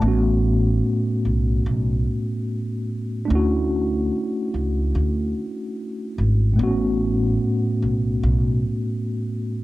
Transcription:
Already playing: A2
0.01 A1 A3 B3
0.06 C#4 F#4
1.25 B1
1.66 B1
3.25 A3 D4
3.30 D2 C#4 E4
3.35 F#4
4.54 C#2
4.95 D2
6.18 G#1
6.53 A2 A3
6.58 A1 B3 C4
6.63 C#4 F#4
7.82 B1
8.23 B1

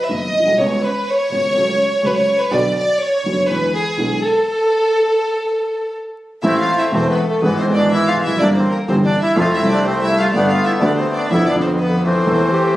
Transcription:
0.04 E5
0.09 F#1 F#2 D#3 F#3 B3 F#4 D#5
0.33 B1
0.39 A#1
0.46 B1
0.52 C2
0.57 C#2 C#3 G#3 B3 F4 C#5
0.83 B4
1.08 C#5
1.30 G#1 G#2 C#3 G#3 B3 F4
1.54 C#2 C#3 F#3 A3 F#4
2.03 C#2 C#3 F#3 A3 F#4 B4
2.17 C#5
2.40 B4
2.51 B1 B2 D3 F#3 B3 F#4 D5
2.77 D5
3.01 C#5
3.24 F#1 F#2 D3 F#3 B3 F#4
3.49 E2 D3 E3 G#3 B3 E4 B4
3.73 G#4
3.97 B1 B2 D3 G#3 B3 E4
4.22 A4
6.43 A1 A2 E3 A3 C4 E4 A4 E5
6.59 F4 F5
6.77 E4 E5
6.92 E1 E2 E3 A3 C4 A4 C5
7.09 B3 B4
7.26 A3 A4
7.41 G#1 G#2 E3 G#3 B3 G#4 B4
7.57 C4 C5
7.66 G#1 G#2 E3 G#3 B3 G#4
7.73 D5
7.77 D4
7.91 E4 E5
8.07 F4 F5
8.16 F1
8.22 E2 E5
8.26 F2 E4
8.35 F#2 D5
8.40 G1 G2 E3 A#3 C4 D4 G4
8.55 C4 C5
8.71 A#4
8.75 A#3
8.88 G1 G2 E3 A#3 C4 G4 C5
9.05 D4 D5
9.21 E4 E5
9.35 F2 F3 A3 C4 F4 A4 F5
9.40 A3
9.53 E4 E5
9.60 C2 C3 F3 A3 C4
9.64 A4 D5
9.71 D4
9.85 C4 C5
10.02 E4 E5
10.17 F4 F5
10.32 G1 G2 D3 A3 B3 G4 D5
10.36 A3 D4
10.47 F5
10.53 F4
10.63 E4 E5
10.80 D2 D3 A3 B3 G4 D5
10.84 D4
10.94 C5
10.99 C4
11.12 D4 D5
11.28 F2 D3 F3 B3 F4 E5
11.32 B3 E4
11.45 D5
11.49 D3 D4
11.54 F2 F3 B3 F4
11.61 C5
11.66 C4
11.78 B3 B4
12.03 E3 A3 C4 C5
12.27 E2 E3 A3 C4 A4
12.50 G4

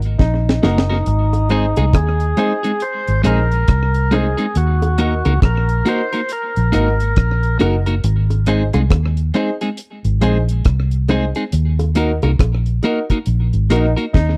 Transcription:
Already playing: G#1
0.02 closed hi-hat
0.19 A#1 D#4, kick, snare
0.49 snare
0.62 F#1 A#3 D#4 F#4 A#4, snare, high bongo, low bongo
0.78 snare
0.90 A#3 D#4 F#4 A#4
1.06 G#1, closed hi-hat
1.33 closed hi-hat, high bongo
1.49 G#3 C4 D#4 G#4 C5, closed hi-hat
1.76 C2 G#3 C4 D#4 G#4, closed hi-hat, high bongo
1.93 D#2 G#4, kick, cross-stick, closed hi-hat, high bongo
2.20 closed hi-hat
2.37 G#3 C4 D#4 G#4 C5, closed hi-hat
2.63 G#3 C4 D#4 G#4, closed hi-hat
2.80 C5, closed hi-hat
3.07 G#1, closed hi-hat
3.23 A#1 G#3 C4 D#4 G#4 A#4 C5, closed hi-hat, high bongo
3.51 closed hi-hat
3.68 C2, kick, cross-stick, closed hi-hat
3.94 closed hi-hat
4.11 G#3 C4 D#4 G#4 C5, closed hi-hat, high bongo, low bongo
4.37 G#3 C4 D#4 G#4, closed hi-hat
4.55 D#2 F#4, closed hi-hat
4.82 closed hi-hat, high bongo
4.98 A#3 D#4 F#4 A#4, closed hi-hat
5.25 C#2 A#3 D#4 F#4 A#4, closed hi-hat, high bongo
5.42 A#1 A#4, kick, cross-stick, closed hi-hat, high bongo
5.69 closed hi-hat
5.85 A#3 D#4 F#4 A#4 C5, closed hi-hat
6.13 A#3 D#4 F#4 A#4, closed hi-hat
6.29 A#4, closed hi-hat
6.56 A#1, closed hi-hat
6.72 G#1 A#3 D#4 F#4 A#4, cross-stick, closed hi-hat, high bongo
7.00 closed hi-hat
7.16 A#1, kick, cross-stick, closed hi-hat
7.43 closed hi-hat
7.59 F#1 A#3 D#4 F#4 A#4, closed hi-hat, high bongo, low bongo
7.86 A#3 D#4 F#4 A#4, closed hi-hat
8.04 G#1, closed hi-hat
8.30 closed hi-hat, high bongo
8.46 G#3 C4 D#4 G#4 C5, closed hi-hat
8.73 C2 G#3 C4 D#4 G#4, closed hi-hat, high bongo
8.90 D#2, kick, cross-stick, closed hi-hat, high bongo
9.17 closed hi-hat
9.34 G#3 C4 D#4 G#4 C5, closed hi-hat
9.61 G#3 C4 D#4 G#4, closed hi-hat
9.77 closed hi-hat
10.04 G#1, closed hi-hat
10.21 A#1 G#3 C4 D#4 G#4 C5, closed hi-hat, high bongo
10.49 closed hi-hat
10.65 C2, kick, cross-stick, closed hi-hat
10.91 closed hi-hat
11.08 G#3 C4 D#4 G#4 C5, closed hi-hat, high bongo, low bongo
11.35 G#3 C4 D#4 G#4 C5, closed hi-hat
11.52 D#2, closed hi-hat
11.79 closed hi-hat, high bongo
11.95 A#3 D#4 F#4 A#4, closed hi-hat
12.22 C2 A#3 D#4 F#4 A#4, closed hi-hat, high bongo
12.39 A#1, kick, cross-stick, closed hi-hat, high bongo
12.66 closed hi-hat
12.83 A#3 D#4 F#4 A#4, closed hi-hat
13.10 A#3 D#4 F#4 A#4, kick, closed hi-hat
13.26 A#1, closed hi-hat
13.53 G#1, closed hi-hat
13.70 A#1 A#3 D#4 F#4 A#4, cross-stick, closed hi-hat, high bongo
13.97 A#3 D#4 F#4 A#4, closed hi-hat
14.13 D#2 D#4, kick, snare

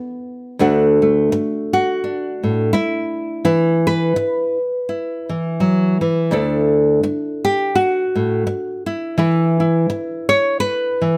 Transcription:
Already playing: B3 E4
0.59 D2 A3 D4 F#4
1.02 A3
1.32 muted nylon-string guitar stroke
1.73 F#4
2.04 D4
2.43 A2
2.73 E4, muted nylon-string guitar stroke
3.45 E3 E4
3.87 B4
4.16 muted nylon-string guitar stroke
4.89 E4
5.29 E3
5.60 F#3
6.01 E3
6.31 D2 D4 E4 A4
7.03 muted nylon-string guitar stroke
7.45 G4
7.75 F#4
8.15 A2
8.47 muted nylon-string guitar stroke
8.86 E4
9.18 E3 E4 B4
9.60 E4
9.90 muted nylon-string guitar stroke
10.29 C#5
10.60 B4
11.01 E3

